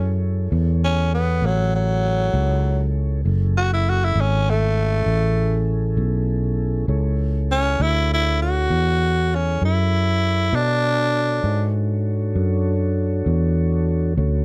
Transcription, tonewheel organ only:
Already playing: E4 G#4 A4 C#5
3.25 C#4 E4 G#4 A4
6.88 E4 G#4 A4 C#5
10.53 D4 F#4 A4 C#5
14.17 C#4 F#4 A4 C#5

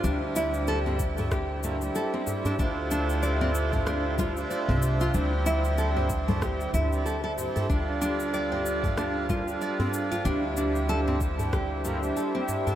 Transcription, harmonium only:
0.02 G3 E4 G4
1.62 G3 A#3 E4 G4 A#4
1.79 G3 E4 G4
2.57 A3 D4 E4 F4 C5
4.18 A3 D4 E4 F4 C5
4.34 A3 D4 F4 C5 E5
5.12 G3 C4 E4 G4
5.16 C5
6.91 G3 C4 E4 G4 D5
7.37 G3 C4 E4 G4 C5
7.68 G3 D4 F4
7.72 A4
9.29 G3 A#3 D4 F4 A4
9.46 G3 D4 F4 A4
10.24 G3 E4 G4
11.84 G3 A#3 E4 G4 A#4
12.00 G3 E4 G4

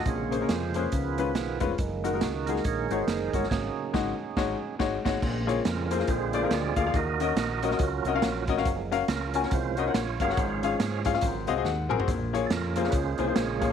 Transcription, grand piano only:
0.06 A#2
0.31 A#3 C#4 G#4 C5
0.41 A#3 C#4 G#4 A#4
0.75 A#3 C#4 G#4 C5
0.92 C#3
1.18 G#3 C#4 F4 B4
1.60 G#3 C#4 F4 B4
2.04 G#3 D#4 F#4 A#4
2.14 G#3 D#4 F#4 A#4
2.48 G#3 D#4 F#4 G#4
2.91 G#3 D#4 F#4 C#5
3.34 G#3 D#4 F#4 C#5
3.94 G#3 D#4 F#4
4.37 G#3 D#4 F#4 C#5
4.79 G#3 D#4 F#4 C#5
5.05 G#3 D#4 F#4 C#5
5.23 A#2
5.47 A#3 F4 G#4 C#5
5.91 A#3 F4 G#4 C5
5.99 A#3 F4 G#4 C5
6.09 A#2
6.34 A#3 F4 G#4 D5
6.43 A#3 F4 G#4 A#4
6.76 A#3 F4 G#4 F5
6.86 A#3 F4 G#4 F5
6.96 D#3
7.20 C#4 F#4 A#4 D#5
7.63 C#4 F#4 A#4 D#5
7.71 C#4 F#4 A#4 D#5
8.06 C#4 F#4 A#4 D#5
8.15 C#4 F#4 A#4 F5
8.49 C#4 F#4 A#4 D#5
8.58 C#4 F#4 A#4 F5
8.91 C#4 F#4 A#4 F5
9.35 C#4 F#4 A#4 G#5
9.44 C#4 F#4 A#4 C#5
9.77 C#4 F#4 A#4 D#5
9.87 C#4 F#4 A#4 F#5
10.20 C#4 F#4 A#4 F5
10.29 C#4 F#4 A#4 F#5
10.38 G#2
10.63 C#4 F4 G#4 F5
11.05 C#4 F4 G#4 F5
11.14 C#4 F4 G#4 F5
11.23 G#2
11.48 C4 F#4 G#4 D#5 F5
11.57 C4 F#4 G#4 D#5
11.65 F#5
11.89 C4 F#4 G#4 A#4 G#5
11.99 C4 F#4 G#4 C5
12.08 A#2
12.33 A#3 F4 G#4 C#5
12.76 A#3 F4 G#4 C5
12.84 A#3 F4 G#4 C#5
13.18 A#3 F4 G#4 C5
13.28 A#3 F4 G#4 C5
13.61 A#3 F4 G#4 C#5

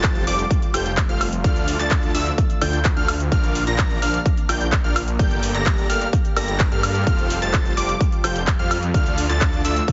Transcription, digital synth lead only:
Already playing: A6
0.27 D6
0.74 G6
1.09 F6
1.44 F6
1.79 A6
2.15 E6
2.62 G6
2.97 F6
3.32 F6
3.67 A#6
4.02 F6
4.49 G6
4.84 F6
5.19 G6
5.54 A#6
5.90 F6
6.37 A#6
6.72 F6
7.07 F6
7.42 A6
7.77 D6
8.24 G6
8.59 F6
8.94 F6
9.29 A6
9.65 E6

